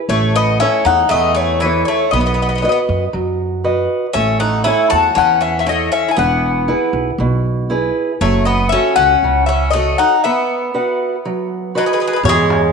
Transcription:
0.09 0.62 A1 medium
0.09 0.33 A3 medium
0.09 0.59 A3 medium
0.09 0.35 C#5 medium
0.36 0.59 B3 medium
0.36 0.60 D#5 loud
0.60 0.84 C#4 medium
0.60 1.02 E4 medium
0.60 1.02 A4 soft
0.60 1.02 C#5 medium
0.60 0.86 E5 medium
0.85 1.03 E2 medium
0.85 1.09 D#4 medium
0.85 1.10 F#5 loud
1.09 1.82 E2 medium
1.09 1.33 A3 medium
1.09 1.35 D#5 loud
1.13 1.61 E3 medium
1.34 1.59 A3 medium
1.34 1.61 C#5 medium
1.60 1.85 E3 medium
1.60 2.04 E4 soft
1.60 2.04 A4 soft
1.60 1.85 B4 medium
1.65 2.04 C#5 medium
1.85 2.11 A3 medium
1.85 2.10 C#5 medium
2.11 2.66 B1 medium
2.11 2.20 B3 medium
2.11 2.19 D#5 medium
2.15 2.63 B3 medium
2.20 2.26 B3 soft
2.20 2.25 D#5 medium
2.26 2.33 B3 soft
2.26 2.34 D#5 medium
2.34 2.41 B3 soft
2.34 2.41 D#5 medium
2.42 2.48 B3 soft
2.42 2.47 D#5 medium
2.49 2.56 B3 soft
2.49 2.54 D#5 medium
2.55 2.64 B3 soft
2.55 2.61 D#5 medium
2.62 2.71 B3 soft
2.62 3.04 F#4 medium
2.62 3.04 B4 soft
2.62 2.68 D#5 soft
2.62 3.05 D#5 medium
2.69 2.79 B3 medium
2.69 2.78 D#5 medium
2.89 3.07 F#2 medium
3.13 3.85 F#2 medium
3.13 3.63 F#3 medium
3.64 4.05 F#4 soft
3.64 4.05 B4 soft
3.64 4.05 D#5 soft
4.13 4.69 A1 medium
4.13 4.65 A3 medium
4.13 4.38 C#4 medium
4.13 4.39 E5 medium
4.40 4.64 D#4 medium
4.40 4.65 F#5 medium
4.64 4.89 E4 medium
4.64 5.07 E4 soft
4.64 5.07 A4 soft
4.64 5.08 C#5 medium
4.64 4.90 G#5 medium
4.90 5.10 E2 medium
4.90 5.15 F#4 medium
4.90 5.15 A5 loud
5.15 5.88 E2 medium
5.15 5.66 E3 medium
5.15 5.39 C#4 medium
5.15 5.41 F#5 medium
5.41 5.58 C#4 medium
5.41 5.59 E5 medium
5.59 5.66 C#4 medium
5.59 5.67 E5 medium
5.67 5.91 A3 medium
5.67 6.08 E4 soft
5.67 6.09 A4 soft
5.67 6.09 C#5 medium
5.67 5.92 D#5 medium
5.92 6.10 C#4 medium
5.92 6.10 E5 medium
6.09 6.17 E4 soft
6.09 6.18 G#5 medium
6.17 6.71 E1 medium
6.17 6.68 E3 medium
6.17 6.90 B3 medium
6.17 6.91 F#5 medium
6.68 7.09 E4 soft
6.68 7.10 G#4 soft
6.68 7.10 B4 medium
6.93 7.11 B1 medium
7.18 7.90 B1 medium
7.18 7.69 B2 medium
7.70 8.11 E4 medium
7.70 8.11 G#4 soft
7.70 8.12 B4 soft
8.21 8.74 F#1 loud
8.21 8.71 F#3 medium
8.21 8.45 A3 medium
8.21 8.45 C#5 medium
8.45 8.70 B3 medium
8.45 8.69 D#5 medium
8.69 8.95 C#4 medium
8.69 9.13 F#4 soft
8.69 9.13 A4 soft
8.69 8.94 E5 medium
8.74 9.14 C#5 medium
8.96 9.15 C#2 medium
8.96 9.44 C#4 medium
8.96 9.46 F#5 loud
9.23 9.93 C#2 medium
9.23 9.72 C#3 medium
9.46 9.72 C#4 medium
9.46 9.70 E5 medium
9.71 9.97 A3 medium
9.71 10.14 F#4 soft
9.71 9.98 D#5 medium
9.75 10.15 A4 soft
9.75 10.15 C#5 medium
9.98 10.22 D#4 medium
9.98 10.23 F#5 loud
10.24 11.71 B3 medium
10.24 10.73 B3 medium
10.24 11.71 E5 medium
10.74 11.15 F#4 soft
10.74 11.15 B4 soft
10.74 11.15 F#5 medium
11.25 11.74 F#3 medium
11.75 11.84 F#3 medium
11.75 12.15 F#4 soft
11.75 12.15 B4 soft
11.75 11.84 B4 medium
11.75 12.16 D#5 soft
11.86 11.91 G#3 soft
11.86 11.92 B4 medium
11.93 11.99 G#3 soft
11.93 11.99 B4 medium
12.00 12.06 G#3 soft
12.00 12.06 B4 medium
12.07 12.13 G#3 medium
12.07 12.12 B4 medium
12.13 12.21 G#3 soft
12.13 12.20 B4 medium
12.23 12.72 E2 medium
12.23 12.72 E3 medium
12.23 12.72 C#5 loud
12.23 darbuka dum medium
12.29 12.72 G#3 medium
12.50 darbuka tek medium
12.63 darbuka tek soft

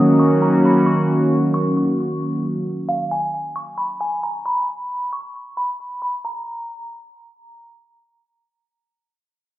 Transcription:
0.00 2.62 D#3 medium
0.00 2.63 F#3 medium
0.00 2.63 A#3 medium
0.00 2.63 C#4 medium
0.00 2.62 F#4 medium
0.00 0.18 D#6 medium
0.19 0.41 C#6 medium
0.42 0.63 A#5 medium
0.66 0.86 B5 medium
0.86 1.50 C#6 loud
1.54 1.75 C#6 medium
2.89 3.10 F5 medium
3.11 3.53 G#5 medium
3.56 3.77 C#6 medium
3.78 3.99 B5 medium
4.01 4.22 G#5 medium
4.23 4.44 A#5 medium
4.46 5.08 B5 medium
5.13 5.55 C#6 medium
5.57 5.99 B5 medium
6.02 6.23 B5 medium
6.25 7.55 A#5 medium

